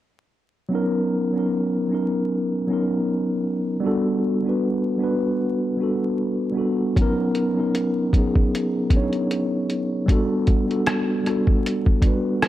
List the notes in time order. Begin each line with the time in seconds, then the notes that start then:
0.69 F#3 B3 C#4
0.73 D#4 A#4
1.32 F#3 B3 C#4
1.37 D#4 A#4
1.88 F#3 B3 C#4
1.92 D#4 A#4
2.67 F#3 B3 C#4
2.71 D#4 A#4
3.80 G3 B3 D4
3.85 F#4 A4
4.43 G3 B3 D4
4.47 F#4 B4
4.98 G3 B3 D4
5.02 F#4 B4
5.77 G3 B3 D4
5.81 F#4 A4
6.52 G3 B3 D4
6.57 F#4 A4
6.96 F#3 B3 C#4, kick, closed hi-hat
7.00 D#4 A#4
7.35 closed hi-hat
7.54 F#3 B3 C#4
7.58 D#4 A#4
7.75 closed hi-hat
8.12 F#3 B3 C#4, kick, closed hi-hat
8.17 D#4 G#4
8.36 kick
8.55 closed hi-hat
8.90 F#3 B3 C#4, kick, closed hi-hat
8.95 D4 C#5
9.01 D#4
9.13 closed hi-hat
9.31 closed hi-hat
9.70 closed hi-hat
10.06 G3 B3 D4, kick, closed hi-hat
10.11 F#4 A4
10.47 kick, closed hi-hat
10.66 G3 B3 D4
10.71 F#4 A4, closed hi-hat
10.86 cross-stick, closed hi-hat
11.23 G3 B3 D4, cross-stick, closed hi-hat
11.28 F#4 A4
11.47 kick
11.66 closed hi-hat
11.86 kick
12.01 G3 B3 D4, kick, closed hi-hat
12.05 F#4 B4
12.42 cross-stick, closed hi-hat